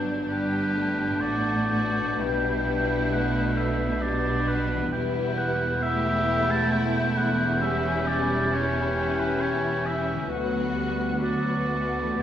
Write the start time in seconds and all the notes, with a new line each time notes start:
Already playing: G1 G2 F#3 B3 D4 B4 G6
0.28 G3 D4 G4 B4
0.75 A3
1.21 A1 A2 F#4 D5
1.71 F#4
2.01 B2
2.06 B3
2.11 D4
2.15 B4
2.20 B1 B2 G3 B3 E4 G5
2.68 G3
3.13 A3 F#5
3.57 E5
4.02 G3 B3 D4 D5
4.47 B4
4.75 E3
4.80 B3
4.84 E4
4.89 B4 G5
4.93 E1 E2 G3 B3 E4 G6
5.38 F#5
5.82 A3 E4 G4 E5
6.51 A5
6.72 E4 G5
7.17 F#5
7.44 E3
7.48 C#4
7.52 E4
7.57 G4 E5
7.61 G3 C#4 E4 G4
8.07 D5
8.52 E3 C#4 C#5
9.19 B4
9.41 C#4 C#5
9.86 E5
10.12 D3
10.17 B3
10.21 F#4
10.26 B3 F#4 B4
10.30 D2 F#3 B3 F#4 F#6
10.75 G3
11.21 F#3 B3 F#4 D5
11.70 A3
12.02 E3
12.06 C#4
12.10 G4
12.15 B4
12.19 E1 G4 G6